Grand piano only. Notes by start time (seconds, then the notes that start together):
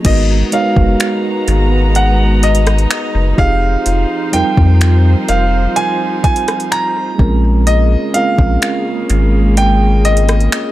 0.06 D#5
0.53 F5
1.96 F#5
2.43 D#5
3.39 F5
4.33 G5
5.29 F5
5.76 G#5
6.24 G#5
6.72 A#5
7.67 D#5
8.14 F5
9.57 G5
10.05 D#5